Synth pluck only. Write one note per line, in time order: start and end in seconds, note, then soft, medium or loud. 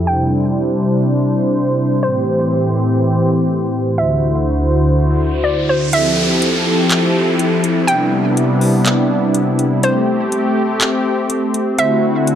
0.07 1.50 G5 loud
2.03 2.96 C5 loud
3.98 5.40 E5 loud
5.44 5.67 D5 medium
5.69 5.92 C5 medium
5.93 6.87 E5 loud
7.87 9.30 G5 loud
9.84 10.77 C5 loud
11.79 12.35 E5 loud